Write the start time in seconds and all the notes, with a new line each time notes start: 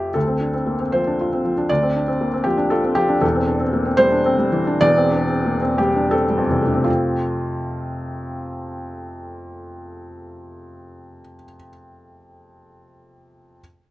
Already playing: F2 F3 A3 E4 G4 E5
0.14 D2 A4
0.27 C4
0.41 D4
0.54 C4
0.66 A#3
0.79 C4
0.92 F3 C5
1.07 D4
1.21 F4
1.33 C4
1.45 F3
1.58 D4
1.69 D2 D5
1.83 C4
1.96 D4
2.08 C4
2.21 A#3
2.33 C4
2.44 F3 G4
2.58 D4
2.70 F4 A4
2.84 C4
2.95 F3 G4
3.09 D4
3.21 E1 E2 A4
3.35 C4
3.47 D4
3.60 C4
3.73 A#3
3.85 C4
3.97 G3 C5
4.12 D4
4.26 C4
4.38 G3
4.52 E3
4.67 D4
4.81 E1 E2 D5
4.97 C4
5.12 D4
5.29 C4
5.45 A#3
5.62 C4
5.78 G3 G4
5.96 D4
6.11 C4 A4
6.30 G3
6.37 F2
6.49 C3 E3
6.62 A3
6.68 D4
6.74 C4
6.84 F4